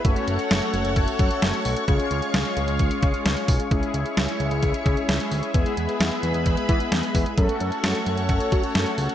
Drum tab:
HH |xxxxxxxxxxxxxxox|xxxxxxxxxxxxxxox|xxxxxxxxxxxxxxox|xxxxxxxxxxxxxxox|
SD |----o-------o---|----o-------o---|----o-------o---|----o-------o---|
BD |o-------o-o-----|o-------o-o---o-|o-------o-o-----|o-------o-o---o-|

HH |xxxxxxxxxxxxxxox|
SD |----o-------o---|
BD |o-------o-o-----|